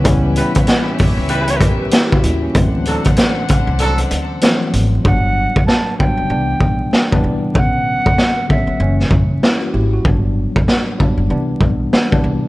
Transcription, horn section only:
X:1
M:4/4
L:1/16
Q:"Swing 16ths" 1/4=96
K:Glyd
V:1 name="Horn section"
z2 [G,EB] z4 z [G,EB]2 z6 | z2 [F,DA] z4 z [F,DA]2 z6 | z16 | z16 |
z16 |]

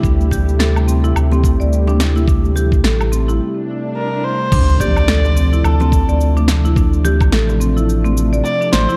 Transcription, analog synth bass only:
X:1
M:4/4
L:1/16
Q:"Swing 16ths" 1/4=107
K:Dm
V:1 name="Analog synth bass" clef=bass
D,,8 D,,3 D,,4- D,,- | D,,4 A,,,4 z8 | D,,8 D,,3 D,,4- D,,- | D,,4 A,,,8 z2 A,,, z |]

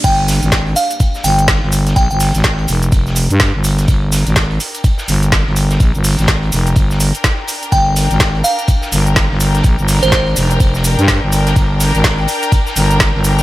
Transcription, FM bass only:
X:1
M:4/4
L:1/16
Q:"Swing 16ths" 1/4=125
K:Gphr
V:1 name="FM bass" clef=bass
G,,,3 A,,,3 z4 G,,,3 G,,,3 | B,,, G,,,2 A,,,3 F,,,2 F,,,3 G,,2 G,,,3 | G,,,3 A,,,3 z4 G,,,3 G,,,3 | B,,, G,,,2 A,,,3 F,,,2 G,,,3 z4 z |
G,,,3 A,,,3 z4 G,,,3 G,,,3 | B,,, G,,,2 A,,,3 F,,,2 F,,,3 G,,2 G,,,3 | G,,,3 A,,,3 z4 G,,,3 G,,,3 |]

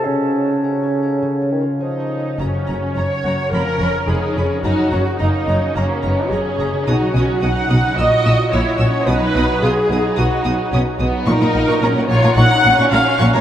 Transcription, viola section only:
X:1
M:4/4
L:1/16
Q:1/4=108
K:F#
V:1 name="Viola section"
z12 D4 | C4 c4 A4 G4 | F4 D4 C4 G4 | F4 f4 d4 c4 |
B4 G4 F4 z4 | A6 c2 f4 e3 c |]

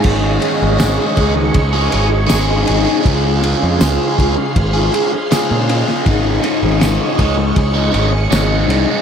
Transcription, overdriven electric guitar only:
X:1
M:4/4
L:1/16
Q:1/4=80
K:Ab
V:1 name="Overdriven electric guitar"
[A,,E,A,DEA]2 [A,DEA]2 [A,,E,A,DEA]2 [A,DEA]3 [A,DEA] [A,DEA]2 [A,,E,A,DEA]2 [A,DEA] [A,DEA] | [D,A,DFA]2 [A,DFA]2 [D,A,DFA]2 [A,DFA]3 [DFA] [A,DFA]2 [D,A,DFA]2 [A,DFA] [DFA] | [A,,D,A,DE]2 [D,A,DE]2 [A,,D,A,DE]2 [D,A,DE]3 [A,DE] [D,A,DE]2 [A,,D,A,DE]2 [D,A,DE] [A,DE] |]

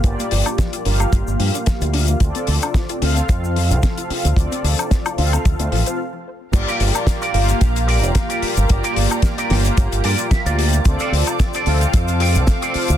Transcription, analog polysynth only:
X:1
M:4/4
L:1/8
Q:"Swing 16ths" 1/4=111
K:Gm
V:1 name="Analog polysynth"
[B,FGd]3 [B,FGf]4- [B,FGf] | [CFAd]3 [CFAf]4- [CFAf] | [CFAd]3 [CFAf]3 z2 | [B,FGd]3 [B,FGf]4- [B,FGf] |
[B,FGd]3 [B,FG]4- [B,FG] | [CFAd]3 [CFAf]4- [CFAf] |]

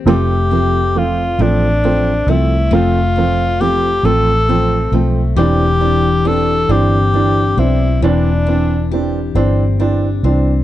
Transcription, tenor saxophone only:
X:1
M:6/8
L:1/8
Q:3/8=45
K:Flyd
V:1 name="Tenor saxophone"
G2 F D2 E | F2 G A2 z | G2 A G2 E | D2 z4 |]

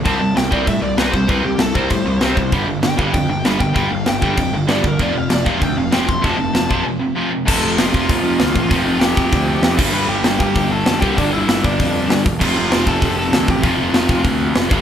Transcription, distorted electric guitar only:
X:1
M:4/4
L:1/8
Q:1/4=194
K:Flyd
V:1 name="Distorted electric guitar" clef=bass
[C,G,C] [C,G,] [C,G,] [C,G,C] [C,G,] [C,G,] [C,G,C] [C,G,] | [C,G,C] [C,G,] [C,G,] [C,G,C] [C,G,] [C,G,] [C,G,C] [C,G,] | [G,,D,G,] [G,,D,] [G,,D,] [G,,D,G,] [G,,D,] [G,,D,] [G,,D,G,] [G,,D,] | [G,,D,G,] [G,,D,] [G,,D,] [G,,D,G,] [G,,D,] [G,,D,] [G,,D,G,] [G,,D,] |
[F,,C,F,] [F,,C,] [F,,C,] [F,,C,F,] [F,,C,] [F,,C,] [F,,C,F,] [F,,C,] | [F,,C,F,] [F,,C,] [F,,C,] [F,,C,F,] [F,,C,] [F,,C,] [F,,C,F,] [F,,C,] | [F,,C,F,]8 | [F,,C,F,]6- [F,,C,F,] [G,,D,G,]- |
[G,,D,G,]6- [G,,D,G,] [G,,D,G,]- | [G,,D,G,]6- [G,,D,G,] z | [F,,C,F,]8 | [F,,C,F,]6- [F,,C,F,] [G,,D,G,] |]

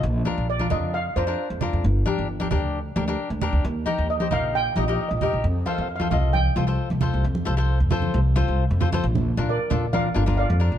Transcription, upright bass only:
X:1
M:4/4
L:1/16
Q:1/4=133
K:Bb
V:1 name="Upright bass" clef=bass
B,,,2 z B,,,3 F,,4 F,,2 z F,,2 F,, | G,,,2 z G,,,3 D,,4 D,,2 z D,,2 D,, | E,,2 z E,,3 B,,,4 B,,,2 z B,,,2 B,,, | F,,2 z F,,3 C,,4 C,,2 z C,,2 C,, |
F,,2 C,,3 F,,3 C,,3 C,,2 F,,3 | B,,,3 B,,2 z B,,,4 G,,,3 F,,2 B,,, |]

